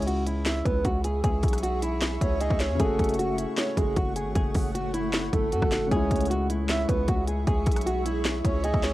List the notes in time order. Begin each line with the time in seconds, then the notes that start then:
Already playing: C#2 C#3 G#3 E4 G#4 E5 C#6
0.02 closed hi-hat
0.07 F#4, closed hi-hat
0.27 E4, closed hi-hat
0.46 E5, snare, clap, closed hi-hat
0.65 C#2 B4, kick, closed hi-hat
0.85 C#2 F#4, kick, closed hi-hat
1.04 G#4, closed hi-hat
1.24 C#2 G#4, kick, closed hi-hat
1.43 B1, kick, closed hi-hat, open hi-hat
1.48 closed hi-hat
1.53 cross-stick, closed hi-hat
1.58 closed hi-hat
1.63 F#4, closed hi-hat
1.82 E4, closed hi-hat
2.01 snare, clap, closed hi-hat
2.21 C#2 C#5, kick, closed hi-hat
2.41 G#4 D#5, closed hi-hat
2.50 C#2, kick
2.60 C#5, snare, clap, closed hi-hat
2.70 E2
2.75 C#3
2.80 F#1 A3 G#4 A4 F#5, kick, closed hi-hat
2.84 F#4
2.99 F#1, kick, closed hi-hat
3.04 closed hi-hat
3.09 closed hi-hat
3.14 closed hi-hat
3.19 F#4, closed hi-hat
3.38 E4, closed hi-hat
3.57 C#5, snare, clap, closed hi-hat
3.77 F#1 G#4, kick, closed hi-hat
3.96 F#1 F#4, kick, closed hi-hat
4.16 G#4, closed hi-hat
4.26 G#1
4.35 F#1 G#4, kick, closed hi-hat
4.55 F#1, kick, open hi-hat
4.74 F#4, closed hi-hat
4.93 E4, closed hi-hat
5.13 snare, clap, closed hi-hat
5.33 F#1 A4, kick, closed hi-hat
5.52 F#2 F#4, closed hi-hat
5.62 F#1, kick, cross-stick
5.72 snare, clap, closed hi-hat
5.87 C#3
5.91 C#2 G#3 G#4 C#5 E5 C#6, kick, closed hi-hat
5.96 E4
6.11 C#2, kick, closed hi-hat
6.16 closed hi-hat
6.21 closed hi-hat
6.25 closed hi-hat
6.30 F#4, closed hi-hat
6.50 E4, closed hi-hat
6.69 E5, snare, clap, closed hi-hat
6.89 C#2 B4, kick, closed hi-hat
7.08 C#2 F#4, kick, closed hi-hat
7.28 G#4, closed hi-hat
7.47 C#2 G#4, kick, closed hi-hat
7.66 B1, kick, closed hi-hat, open hi-hat
7.72 closed hi-hat
7.76 cross-stick, closed hi-hat
7.81 closed hi-hat
7.86 F#4, closed hi-hat
8.06 E4, closed hi-hat
8.25 snare, clap, closed hi-hat
8.45 C#2 C#5, kick, closed hi-hat
8.64 G#4 D#5, closed hi-hat
8.74 C#2, kick
8.83 C#5, snare, clap, closed hi-hat